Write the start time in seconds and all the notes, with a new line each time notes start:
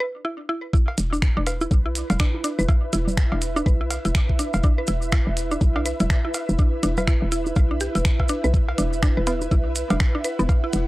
0.00 B4
0.25 E4
0.49 E4
0.73 E4, kick, maracas
0.88 cowbell
0.97 E1 B4, closed hi-hat, maracas
1.12 D4, maracas
1.22 finger snap, kick, maracas
1.37 E1 D4
1.47 B4, closed hi-hat, cowbell, maracas
1.61 E4, low bongo, maracas
1.71 B1, kick, maracas
1.86 E4
1.95 closed hi-hat, maracas
2.04 E5
2.10 E1, closed hi-hat, cowbell, low conga, maracas
2.19 D4, finger snap, kick, maracas
2.34 low bongo
2.44 D4, closed hi-hat, maracas
2.59 E1 B4, low bongo, maracas
2.69 E4, kick, cowbell, maracas
2.93 E1 E4, closed hi-hat, low bongo, maracas
3.08 low conga, maracas
3.17 finger snap, kick, maracas
3.32 E1 D4, cowbell
3.42 closed hi-hat, maracas
3.56 D4, low bongo, maracas
3.66 B1 B4, kick, maracas
3.81 E4
3.90 closed hi-hat, cowbell, maracas
4.05 E1 E4, closed hi-hat, maracas
4.15 finger snap, kick, maracas
4.29 kick
4.39 D4, closed hi-hat, maracas
4.54 E1, cowbell, maracas
4.63 D4, kick, maracas
4.78 B4
4.87 E1 E4, closed hi-hat, maracas
5.02 maracas
5.12 E4, finger snap, kick, cowbell, maracas
5.27 E1
5.37 closed hi-hat, maracas
5.51 D4, low bongo, maracas
5.61 B1, kick, maracas
5.76 D4, cowbell
5.86 B4, closed hi-hat, maracas
6.00 E1 E4, closed hi-hat, low conga, maracas
6.10 finger snap, kick, maracas
6.25 E4, low bongo
6.34 closed hi-hat, cowbell, maracas
6.49 E1, low bongo, maracas
6.59 D4, kick, maracas
6.83 E1 D4, closed hi-hat, low bongo, maracas
6.97 B4, cowbell, low conga, maracas
7.07 E4, finger snap, kick, maracas
7.22 E1
7.32 E4, closed hi-hat, maracas
7.46 low bongo, maracas
7.56 B1, kick, cowbell, maracas
7.71 D4
7.80 G4, closed hi-hat, maracas
7.95 E1 E4, closed hi-hat, maracas
8.05 finger snap, kick, maracas
8.20 E4, kick, cowbell
8.28 D4, closed hi-hat, maracas
8.44 B1 B4, maracas
8.54 kick, maracas
8.69 cowbell
8.78 E1 D4, closed hi-hat, maracas
8.93 maracas
9.03 D4, finger snap, kick, maracas
9.17 E1 B4
9.27 B3, closed hi-hat, cowbell, maracas
9.41 low bongo, maracas
9.51 B1 E4, kick, maracas
9.75 closed hi-hat, maracas
9.85 F#5
9.90 E1 D4, closed hi-hat, cowbell, low conga, maracas
10.00 finger snap, kick, maracas
10.15 D4, low bongo
10.24 B4, closed hi-hat, maracas
10.39 E1 B3, low bongo, maracas
10.49 kick, cowbell, maracas
10.64 E4
10.73 E1, closed hi-hat, low bongo, maracas